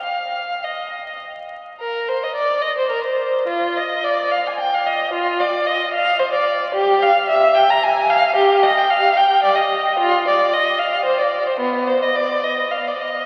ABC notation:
X:1
M:3/4
L:1/16
Q:1/4=109
K:Eb
V:1 name="Violin"
f4 e4 z4 | B2 c e d2 e c B c3 | F2 e2 d2 f a g f e2 | F2 d2 e2 f2 c d3 |
G2 f2 _f2 g b a2 =f2 | G2 e g f2 g2 d e3 | F2 d2 e2 f2 c d2 c | _C2 =c e d2 e2 f d e2 |]